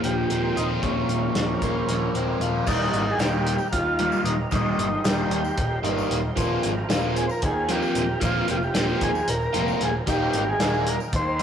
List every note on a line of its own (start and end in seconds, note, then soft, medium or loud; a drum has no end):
0.00 0.23 D#1 medium
0.00 0.30 A#2 medium
0.00 1.34 F3 medium
0.00 1.09 A#3 medium
0.00 2.63 F4 medium
0.00 2.63 A#4 soft
0.00 2.63 C5 soft
0.00 2.63 A#5 medium
0.00 closed hi-hat medium
0.05 0.31 G4 loud
0.30 0.50 D#1 medium
0.30 1.62 C4 medium
0.30 0.58 G4 medium
0.30 closed hi-hat medium
0.56 0.76 D#1 medium
0.56 0.69 D#4 medium
0.56 1.88 F4 medium
0.56 closed hi-hat medium
0.83 1.03 D#1 medium
0.83 2.15 A#2 medium
0.83 2.10 C#4 medium
0.83 kick loud
0.83 closed hi-hat medium
1.07 1.28 D#1 medium
1.07 closed hi-hat medium
1.35 1.55 D#1 medium
1.35 1.88 F3 medium
1.35 snare loud
1.35 closed hi-hat medium
1.62 1.82 D#1 medium
1.62 2.67 A#3 medium
1.62 kick medium
1.62 closed hi-hat medium
1.87 2.07 D#1 medium
1.87 2.67 F3 medium
1.87 snare soft
1.87 closed hi-hat medium
2.13 2.33 D#1 medium
2.13 2.67 C4 medium
2.13 closed hi-hat medium
2.40 2.60 D#1 medium
2.40 2.67 F4 medium
2.40 closed hi-hat medium
2.66 2.86 D#1 medium
2.66 3.02 D#3 medium
2.66 3.02 G3 medium
2.66 3.02 A#3 medium
2.66 3.15 D#4 medium
2.66 3.02 D#4 loud
2.66 6.32 G4 medium
2.66 6.32 A#4 medium
2.66 6.32 D#5 medium
2.66 4.49 A#5 medium
2.66 kick loud
2.66 crash loud
2.66 tambourine loud
2.93 3.11 G#1 medium
2.93 closed hi-hat medium
3.11 3.19 G#4 medium
3.18 3.56 D#1 medium
3.18 3.54 D#3 medium
3.18 3.55 G3 medium
3.18 3.55 A#3 medium
3.18 3.55 D#4 medium
3.18 3.68 G4 loud
3.18 snare loud
3.18 closed hi-hat medium
3.18 tambourine loud
3.47 closed hi-hat medium
3.58 tambourine medium
3.72 4.10 D#2 medium
3.72 4.21 F4 loud
3.72 kick loud
3.72 closed hi-hat loud
3.99 4.34 D#3 medium
3.99 4.34 G3 medium
3.99 4.34 A#3 medium
3.99 4.34 D#4 medium
3.99 closed hi-hat medium
4.12 tambourine medium
4.24 4.43 D#1 medium
4.24 4.37 D#4 medium
4.24 closed hi-hat medium
4.51 4.71 D#1 medium
4.51 4.86 D#3 medium
4.51 4.86 G3 loud
4.51 4.86 A#3 medium
4.51 5.06 D#4 medium
4.51 4.87 D#4 loud
4.51 6.34 C6 medium
4.51 kick loud
4.51 closed hi-hat medium
4.51 tambourine loud
4.78 4.97 G1 medium
4.78 closed hi-hat medium
5.04 5.23 D#1 medium
5.04 5.39 D#3 medium
5.04 5.39 G3 medium
5.04 5.39 A#3 medium
5.04 5.39 D#4 medium
5.04 5.79 G4 medium
5.04 snare loud
5.04 closed hi-hat loud
5.04 tambourine loud
5.18 tambourine soft
5.30 5.49 D#2 loud
5.30 closed hi-hat medium
5.44 tambourine medium
5.58 5.76 D#1 medium
5.58 kick loud
5.58 closed hi-hat medium
5.84 6.02 G1 medium
5.84 6.19 D#3 medium
5.84 6.18 G3 medium
5.84 6.18 A#3 medium
5.84 6.18 D#4 medium
5.84 closed hi-hat medium
5.98 tambourine medium
6.10 6.29 D#1 medium
6.10 closed hi-hat medium
6.35 6.55 D#1 loud
6.35 6.71 F3 loud
6.35 6.71 A#3 loud
6.35 6.71 C4 loud
6.35 10.02 F4 medium
6.35 6.71 F4 loud
6.35 10.02 A#4 medium
6.35 10.02 C5 medium
6.35 11.43 A#5 medium
6.35 kick medium
6.35 closed hi-hat medium
6.35 tambourine medium
6.63 6.82 G#1 medium
6.63 closed hi-hat medium
6.89 7.28 D#1 medium
6.89 7.23 F3 medium
6.89 7.24 A#3 medium
6.89 7.24 C4 medium
6.89 7.24 F4 medium
6.89 snare loud
6.89 closed hi-hat medium
6.89 tambourine loud
7.03 tambourine soft
7.16 7.26 G#4 medium
7.16 closed hi-hat medium
7.28 7.44 A#4 medium
7.28 7.30 C5 medium
7.28 tambourine medium
7.42 7.80 D#2 medium
7.42 7.70 G#4 medium
7.42 kick loud
7.42 closed hi-hat medium
7.69 8.04 F3 medium
7.69 8.03 A#3 medium
7.69 8.03 C4 medium
7.69 8.03 F4 medium
7.69 8.19 G4 medium
7.69 snare soft
7.69 closed hi-hat medium
7.82 tambourine medium
7.95 8.14 D#1 medium
7.95 closed hi-hat medium
8.21 8.40 D#1 medium
8.21 8.56 F3 loud
8.21 8.56 A#3 loud
8.21 8.56 C4 loud
8.21 8.56 F4 loud
8.21 8.48 F4 medium
8.21 kick loud
8.21 closed hi-hat medium
8.21 tambourine medium
8.48 8.67 F1 medium
8.48 8.57 G4 loud
8.48 closed hi-hat medium
8.57 8.63 F4 medium
8.63 9.03 G4 medium
8.63 tambourine soft
8.75 8.93 D#1 medium
8.75 9.09 F3 medium
8.75 9.09 A#3 medium
8.75 9.09 C4 medium
8.75 9.09 F4 loud
8.75 snare loud
8.75 closed hi-hat medium
8.75 tambourine medium
8.89 tambourine soft
9.01 9.20 D#2 medium
9.01 9.29 G#4 medium
9.01 kick medium
9.01 closed hi-hat medium
9.15 tambourine medium
9.28 9.46 D#1 medium
9.28 9.82 A#4 medium
9.28 closed hi-hat loud
9.42 tambourine soft
9.54 9.72 F1 medium
9.54 9.89 F3 medium
9.54 9.89 A#3 medium
9.54 9.88 C4 medium
9.54 9.88 F4 medium
9.54 closed hi-hat medium
9.68 tambourine medium
9.81 9.99 D#1 medium
9.81 9.94 G#4 medium
9.81 snare soft
9.81 closed hi-hat medium
10.06 10.26 D#1 loud
10.06 10.41 D#3 medium
10.06 10.41 G3 medium
10.06 10.42 A#3 loud
10.06 10.42 D#4 loud
10.06 10.49 G4 loud
10.06 11.43 A#4 medium
10.06 11.43 D#5 medium
10.06 11.43 G5 medium
10.06 kick loud
10.06 closed hi-hat loud
10.06 tambourine medium
10.33 10.52 G#1 medium
10.33 closed hi-hat medium
10.49 10.88 G#4 medium
10.59 10.96 D#1 medium
10.59 10.94 D#3 medium
10.59 10.94 G3 medium
10.59 10.94 A#3 medium
10.59 10.94 D#4 medium
10.59 snare loud
10.59 closed hi-hat medium
10.59 tambourine loud
10.74 tambourine soft
10.87 11.01 A#4 medium
10.87 closed hi-hat medium
11.00 tambourine medium
11.13 11.43 D#2 medium
11.13 11.43 C5 loud
11.13 kick loud
11.13 closed hi-hat medium
11.13 tambourine soft
11.39 11.43 D#4 medium
11.39 closed hi-hat medium